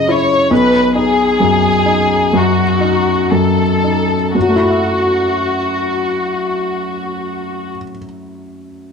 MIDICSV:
0, 0, Header, 1, 3, 480
1, 0, Start_track
1, 0, Tempo, 881057
1, 277, Time_signature, 4, 2, 24, 8
1, 763, Tempo, 927357
1, 1243, Tempo, 1003344
1, 4399, End_track
2, 0, Start_track
2, 0, Title_t, "Violin section"
2, 0, Program_c, 0, 48
2, 49, Note_on_c, 0, 73, 63
2, 280, Note_off_c, 0, 73, 0
2, 288, Note_on_c, 0, 71, 72
2, 518, Note_off_c, 0, 71, 0
2, 529, Note_on_c, 0, 68, 74
2, 1235, Note_off_c, 0, 68, 0
2, 1251, Note_on_c, 0, 66, 52
2, 1718, Note_off_c, 0, 66, 0
2, 1721, Note_on_c, 0, 69, 48
2, 2213, Note_off_c, 0, 69, 0
2, 2216, Note_on_c, 0, 66, 49
2, 3816, Note_off_c, 0, 66, 0
2, 4399, End_track
3, 0, Start_track
3, 0, Title_t, "Felt piano"
3, 0, Program_c, 1, 0
3, 0, Control_c, 1, 64, 127
3, 0, Note_on_c, 1, 49, 33
3, 0, Note_on_c, 1, 64, 34
3, 47, Note_off_c, 1, 64, 0
3, 47, Note_on_c, 1, 64, 37
3, 182, Note_off_c, 1, 49, 0
3, 276, Note_on_c, 1, 35, 50
3, 279, Note_off_c, 1, 64, 0
3, 287, Control_c, 1, 64, 0
3, 381, Control_c, 1, 64, 127
3, 519, Note_on_c, 1, 63, 35
3, 764, Note_on_c, 1, 42, 37
3, 907, Note_off_c, 1, 63, 0
3, 999, Note_on_c, 1, 63, 37
3, 1147, Note_off_c, 1, 42, 0
3, 1223, Note_off_c, 1, 35, 0
3, 1245, Note_on_c, 1, 42, 37
3, 1379, Note_off_c, 1, 63, 0
3, 1472, Note_on_c, 1, 63, 32
3, 1617, Note_off_c, 1, 42, 0
3, 1716, Note_on_c, 1, 42, 30
3, 1863, Note_off_c, 1, 63, 0
3, 1966, Note_on_c, 1, 63, 29
3, 2115, Note_off_c, 1, 42, 0
3, 2210, Note_on_c, 1, 42, 32
3, 2211, Note_off_c, 1, 63, 0
3, 2221, Control_c, 1, 64, 0
3, 2244, Note_on_c, 1, 54, 31
3, 2276, Note_on_c, 1, 57, 30
3, 2303, Control_c, 1, 64, 127
3, 2311, Note_on_c, 1, 64, 30
3, 2344, Note_on_c, 1, 66, 29
3, 2379, Note_on_c, 1, 76, 29
3, 3811, Note_off_c, 1, 42, 0
3, 3845, Note_off_c, 1, 54, 0
3, 3876, Note_off_c, 1, 57, 0
3, 3911, Note_off_c, 1, 64, 0
3, 3944, Note_off_c, 1, 66, 0
3, 3979, Note_off_c, 1, 76, 0
3, 4399, End_track
0, 0, End_of_file